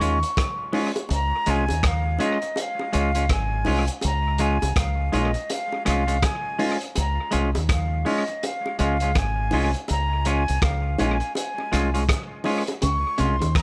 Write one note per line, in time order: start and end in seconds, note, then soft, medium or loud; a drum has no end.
0.00 0.22 D#2 medium
0.00 0.14 D#3 medium
0.00 0.17 G#3 medium
0.00 0.18 C#4 medium
0.00 0.18 F4 medium
0.00 0.75 C#6 loud
0.00 closed hi-hat medium
0.23 closed hi-hat medium
0.37 kick loud
0.37 cross-stick loud
0.37 closed hi-hat loud
0.37 high bongo medium
0.73 0.90 G#3 medium
0.73 0.91 C#4 medium
0.73 0.91 F4 medium
0.73 open hi-hat medium
0.73 low bongo medium
0.96 closed hi-hat medium
0.96 high bongo medium
1.09 1.31 C#2 medium
1.09 closed hi-hat medium
1.09 high bongo medium
1.14 1.52 A#5 loud
1.46 1.68 C2 medium
1.46 1.64 G#3 medium
1.46 1.64 C#4 medium
1.46 1.64 F4 loud
1.46 closed hi-hat medium
1.50 1.89 G#5 loud
1.69 2.17 D#2 medium
1.69 closed hi-hat medium
1.69 high bongo medium
1.83 2.22 F5 loud
1.83 kick loud
1.83 cross-stick loud
1.83 closed hi-hat loud
2.19 2.37 G#3 medium
2.19 2.37 C#4 medium
2.19 2.38 F4 medium
2.19 closed hi-hat medium
2.19 low bongo medium
2.23 2.62 D#5 medium
2.42 muted clean electric guitar stroke soft
2.42 closed hi-hat soft
2.56 closed hi-hat medium
2.56 high bongo medium
2.61 2.95 F5 loud
2.79 high bongo medium
2.93 3.28 C#2 medium
2.93 3.10 G#3 medium
2.93 3.10 C#4 medium
2.93 3.11 F4 medium
2.93 3.34 F5 loud
2.93 closed hi-hat medium
3.15 3.25 G#3 soft
3.15 3.24 C#4 medium
3.15 3.24 F4 medium
3.15 closed hi-hat medium
3.29 3.64 G#1 medium
3.29 3.90 G#5 medium
3.29 kick loud
3.29 cross-stick loud
3.29 closed hi-hat loud
3.29 high bongo medium
3.65 3.88 C2 loud
3.65 3.83 G#3 medium
3.65 3.84 C#4 medium
3.65 3.84 F4 loud
3.65 open hi-hat medium
3.65 low bongo medium
3.87 closed hi-hat medium
4.01 4.59 C#2 loud
4.01 closed hi-hat medium
4.01 high bongo medium
4.05 4.43 A#5 loud
4.38 4.56 G#3 medium
4.38 4.57 C#4 medium
4.38 4.57 F4 medium
4.38 4.80 G#5 loud
4.38 closed hi-hat medium
4.62 4.76 C2 medium
4.62 closed hi-hat medium
4.62 high bongo medium
4.76 5.10 C#2 medium
4.76 5.16 F5 medium
4.76 kick loud
4.76 cross-stick loud
4.76 closed hi-hat loud
5.12 5.34 A#1 medium
5.12 5.30 G#3 medium
5.12 5.30 C#4 medium
5.12 5.30 F4 medium
5.12 5.53 D#5 medium
5.12 closed hi-hat medium
5.12 low bongo medium
5.34 muted clean electric guitar stroke soft
5.34 closed hi-hat soft
5.50 5.87 F5 loud
5.50 closed hi-hat medium
5.50 high bongo medium
5.72 high bongo medium
5.85 6.21 C2 medium
5.85 6.03 G#3 medium
5.85 6.03 C#4 medium
5.85 6.04 F4 medium
5.85 6.26 F5 medium
5.85 cross-stick medium
5.85 closed hi-hat medium
6.07 6.17 G#3 soft
6.07 6.17 C#4 medium
6.07 6.16 F4 medium
6.07 closed hi-hat medium
6.22 6.83 G#5 medium
6.22 kick loud
6.22 cross-stick loud
6.22 closed hi-hat loud
6.22 high bongo medium
6.59 6.76 G#3 medium
6.59 6.76 C#4 medium
6.59 6.77 F4 loud
6.59 open hi-hat medium
6.59 low bongo medium
6.81 closed hi-hat medium
6.95 7.18 C#2 loud
6.95 7.31 A#5 medium
6.95 closed hi-hat medium
6.95 high bongo medium
7.31 7.54 C2 medium
7.31 7.49 G#3 medium
7.31 7.50 C#4 medium
7.31 7.50 F4 medium
7.31 closed hi-hat medium
7.55 8.03 D#2 medium
7.55 closed hi-hat medium
7.55 high bongo medium
7.69 8.10 F5 medium
7.69 kick loud
7.69 cross-stick loud
7.69 closed hi-hat loud
8.05 8.23 G#3 medium
8.05 8.23 C#4 medium
8.05 8.23 F4 medium
8.05 8.47 D#5 medium
8.05 open hi-hat medium
8.05 low bongo medium
8.27 muted clean electric guitar stroke medium
8.27 closed hi-hat soft
8.43 8.81 F5 medium
8.43 closed hi-hat medium
8.43 high bongo medium
8.66 high bongo medium
8.79 9.14 C#2 loud
8.79 8.96 G#3 medium
8.79 8.96 C#4 medium
8.79 8.97 F4 medium
8.79 9.20 F5 loud
8.79 closed hi-hat medium
9.00 9.11 G#3 soft
9.00 9.11 C#4 soft
9.00 9.10 F4 medium
9.00 closed hi-hat medium
9.15 9.50 G#1 medium
9.15 9.76 G#5 medium
9.15 kick loud
9.15 cross-stick loud
9.15 closed hi-hat loud
9.15 high bongo medium
9.51 9.73 C2 loud
9.51 9.70 G#3 medium
9.51 9.70 C#4 loud
9.51 9.70 F4 loud
9.51 open hi-hat medium
9.51 low bongo medium
9.74 closed hi-hat medium
9.88 10.45 C#2 medium
9.88 10.30 A#5 loud
9.88 closed hi-hat medium
9.88 high bongo medium
10.25 10.43 G#3 medium
10.25 10.43 C#4 medium
10.25 10.43 F4 medium
10.25 10.65 G#5 loud
10.25 closed hi-hat medium
10.48 10.62 C2 medium
10.48 closed hi-hat medium
10.62 10.96 C#2 medium
10.62 11.02 F5 medium
10.62 kick loud
10.62 cross-stick loud
10.62 closed hi-hat medium
10.98 11.20 A#1 medium
10.98 11.16 G#3 medium
10.98 11.16 C#4 medium
10.98 11.17 F4 medium
10.98 11.36 G#5 medium
10.98 closed hi-hat medium
10.98 high bongo medium
10.98 low bongo medium
11.20 closed hi-hat soft
11.35 12.05 G#5 medium
11.35 closed hi-hat medium
11.35 high bongo medium
11.58 high bongo medium
11.72 12.07 C2 medium
11.72 11.89 G#3 medium
11.72 11.89 C#4 medium
11.72 11.89 F4 medium
11.72 cross-stick medium
11.72 closed hi-hat medium
11.94 12.03 G#3 medium
11.94 12.03 C#4 medium
11.94 12.02 F4 medium
11.94 closed hi-hat medium
12.09 kick loud
12.09 cross-stick loud
12.09 closed hi-hat loud
12.09 high bongo medium
12.44 12.62 G#3 medium
12.44 12.62 C#4 medium
12.44 12.62 F4 medium
12.44 open hi-hat medium
12.44 low bongo medium
12.67 closed hi-hat medium
12.67 high bongo medium
12.82 13.03 C#2 loud
12.82 12.95 C#3 medium
12.82 13.22 C#6 loud
12.82 closed hi-hat medium
12.82 high bongo medium
13.18 13.40 C2 medium
13.18 13.31 C3 medium
13.18 13.35 G#3 medium
13.18 13.35 C#4 medium
13.18 13.36 F4 medium
13.18 13.58 C6 loud
13.18 closed hi-hat medium
13.40 13.62 D#2 medium
13.40 13.62 D#3 medium
13.40 closed hi-hat medium
13.40 high bongo medium
13.55 13.62 A#5 loud
13.55 kick loud
13.55 cross-stick loud
13.55 closed hi-hat loud